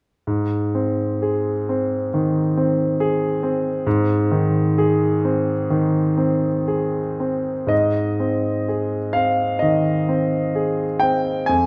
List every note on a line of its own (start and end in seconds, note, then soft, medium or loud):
0.27 2.09 G#2 soft
0.75 1.50 C4 soft
1.22 1.95 G#4 soft
1.69 2.40 C4 soft
2.14 2.83 D#3 soft
2.57 3.25 C4 soft
3.00 3.68 G#4 soft
3.43 4.13 C4 soft
3.87 5.66 G#2 medium
4.31 5.05 D#3 soft
4.78 5.52 G#4 medium
5.25 5.99 C4 soft
5.70 6.47 D#3 soft
6.18 6.99 C4 soft
6.67 7.52 G#4 soft
7.20 7.71 C4 soft
7.67 9.56 G#2 soft
7.67 9.13 D#5 medium
8.20 8.96 C4 soft
8.68 9.44 G#4 soft
9.13 9.90 C4 soft
9.13 9.61 F5 medium
9.59 10.36 D#3 soft
9.59 11.00 D#5 medium
10.09 10.83 C4 soft
10.55 11.30 G#4 soft
11.00 11.49 C4 soft
11.00 11.47 G5 medium
11.46 11.66 F2 soft
11.46 11.66 G#5 medium